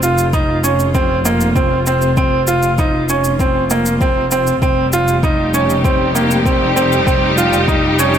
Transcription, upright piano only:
0.03 F4
0.33 D#4
0.64 C#4
0.94 C4
1.25 A#3
1.55 C4
1.87 C4
2.17 C4
2.48 F4
2.79 D#4
3.09 C#4
3.40 C4
3.71 A#3
4.01 C4
4.32 C4
4.62 C4
4.93 F4
5.24 D#4
5.54 C#4
5.85 C4
6.15 A#3
6.46 C4
6.76 C4
7.07 C4
7.37 F4
7.68 D#4
7.99 C#4

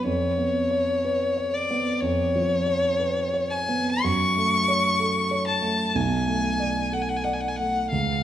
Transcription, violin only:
0.07 C#5
1.54 D5
2.00 C#5
3.51 G#5
4.03 C#6
5.47 A5
5.96 G#5
6.93 F#5
7.02 G#5
7.09 F#5
7.17 G#5
7.25 F#5
7.33 G#5
7.41 F#5
7.48 G#5
7.56 F#5
7.91 F5

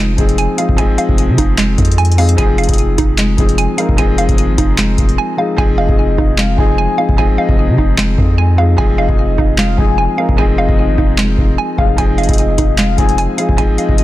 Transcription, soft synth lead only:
5.78 D#5
6.38 F5
6.58 G#5
7.38 D#5
8.98 D#5
9.58 F5
9.78 G#5
10.58 D#5
11.78 F5
12.18 D#5
12.78 F5
12.98 G#5
13.78 D#5

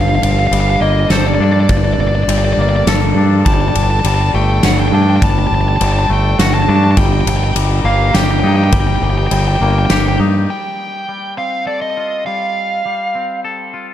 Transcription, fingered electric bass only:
Already playing: G1
0.23 G1
0.51 G1
0.81 G1
1.10 G1
1.40 G2
1.69 G1
1.99 G1
2.28 G1
2.57 G1
2.87 G1
3.15 G2
3.46 G1
3.75 G1
4.04 G1
4.34 G1
4.64 G1
4.92 G2
5.22 G1
5.51 G1
5.81 G1
6.09 G1
6.39 G1
6.68 G2
6.97 G1
7.27 G1
7.56 G1
7.84 G1
8.14 G1
8.43 G2
8.73 G1
9.01 G1
9.31 G1
9.61 G1
9.90 G1
10.20 G2

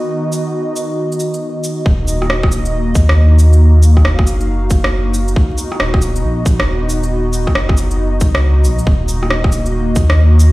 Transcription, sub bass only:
1.86 D#1
2.95 D#2
4.05 F#1
5.80 D#1
6.24 A#1
6.60 D#1
7.56 F#1
8.21 C#2
8.65 A#1
8.87 D#1
9.96 D#2

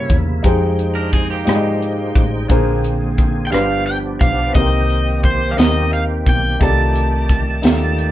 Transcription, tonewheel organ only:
Already playing: C3 C#3 A#3 E4
0.43 F3 G#3 D#4 G5
2.49 D3 A#3 C4 G#4
3.53 F3 B3 D4 G4
4.55 D#3 A#3 C4 G4
6.61 A3 D5

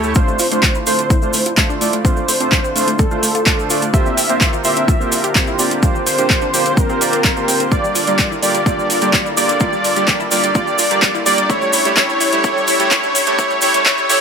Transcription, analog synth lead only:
0.16 C5
0.87 C5
2.28 C5
2.99 A4
3.94 E5
4.65 E5
6.06 C5
6.77 A#4
7.72 D5
8.43 D5
8.66 D5
9.37 D5
9.61 D5
10.31 D5
10.55 D5
11.26 D5
11.50 C#5
11.97 C#5
12.44 C#5
12.91 C#5
13.39 C#5
13.62 C#5
13.86 C#5
14.09 C#5

